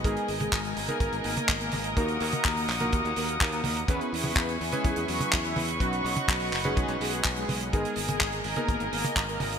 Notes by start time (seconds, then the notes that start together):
Already playing: D#5
0.04 G#1 G#3 B3 D#4 G#4 A#4 G#5, kick, closed hi-hat
0.17 closed hi-hat
0.28 G#1, open hi-hat
0.40 G#3 G#4, closed hi-hat, high tom
0.52 G#1, kick, clap, closed hi-hat
0.65 closed hi-hat
0.77 G#1, open hi-hat
0.89 A#3 B3 D#4 G#4 A#4, closed hi-hat, high tom
1.00 G#1, kick, closed hi-hat
1.13 G#1, closed hi-hat
1.24 G#1 A#3 A#4, open hi-hat
1.37 closed hi-hat, high tom
1.49 G#1, kick, clap, closed hi-hat
1.61 A#3 A#4, closed hi-hat
1.72 G#1, open hi-hat, high tom
1.84 closed hi-hat
1.97 D#2 A#3 D#4 F#4 A#4 F#5 D#6, kick, closed hi-hat
2.09 closed hi-hat
2.20 D#2, open hi-hat
2.32 A#3 A#4, closed hi-hat, high tom
2.44 D#2, kick, clap, closed hi-hat
2.57 open hi-hat
2.68 A#1, clap, open hi-hat
2.80 A#3 D#4 F#4 A#4, closed hi-hat, high tom
2.93 D#2, kick, closed hi-hat
3.05 D#2, closed hi-hat
3.16 D#2 A#3 A#4, open hi-hat
3.29 closed hi-hat
3.41 D#2, kick, clap, closed hi-hat
3.52 A#3 A#4, closed hi-hat
3.64 D#2, open hi-hat, high tom
3.77 closed hi-hat
3.88 E2 B3 C#4 E4 G#4 B4 E5 G#5 C#6, kick, closed hi-hat
4.01 closed hi-hat
4.13 E2, open hi-hat
4.24 B3 B4, open hi-hat, high tom
4.36 E2, kick, clap
4.49 closed hi-hat
4.61 E2, open hi-hat
4.72 G#3 C#4 E4 G#4 B4, closed hi-hat, high tom
4.85 E2, kick, closed hi-hat
4.96 E2, closed hi-hat
5.08 E2 F#3 F#4, open hi-hat
5.21 closed hi-hat, high tom
5.32 E2, kick, clap, closed hi-hat
5.44 E3 E4, closed hi-hat
5.56 E2, open hi-hat, high tom
5.68 closed hi-hat
5.80 B1 F#3 C#4 D#4 F#4 B4 D#5 F#5, kick, closed hi-hat
5.93 closed hi-hat
6.05 B1, open hi-hat
6.16 F#3 F#4, closed hi-hat, high tom
6.28 B1, kick, clap, closed hi-hat
6.40 open hi-hat
6.52 F#1, clap, open hi-hat
6.64 G#3 C#4 D#4 F#4 G#4 B4, closed hi-hat, high tom
6.77 B1, kick, closed hi-hat
6.88 B1, closed hi-hat
7.01 B1 G#3 G#4, open hi-hat
7.13 closed hi-hat
7.24 B1, kick, clap, closed hi-hat
7.36 G#3 G#4, closed hi-hat
7.49 B1, open hi-hat, high tom
7.61 closed hi-hat
7.73 G#1 G#3 B3 D#4 G#4 A#4 D#5 G#5, kick, closed hi-hat
7.85 closed hi-hat
7.96 G#1, open hi-hat
8.08 G#3 G#4, closed hi-hat, high tom
8.21 G#1, kick, clap, closed hi-hat
8.33 closed hi-hat
8.44 G#1, open hi-hat
8.56 A#3 B3 D#4 G#4 A#4, closed hi-hat, high tom
8.68 G#1, kick, closed hi-hat
8.80 G#1, closed hi-hat
8.93 G#1 A#3 A#4, open hi-hat
9.05 closed hi-hat, high tom
9.16 G#1, kick, clap, closed hi-hat
9.29 A#3 A#4, closed hi-hat
9.40 G#1, open hi-hat, high tom
9.52 closed hi-hat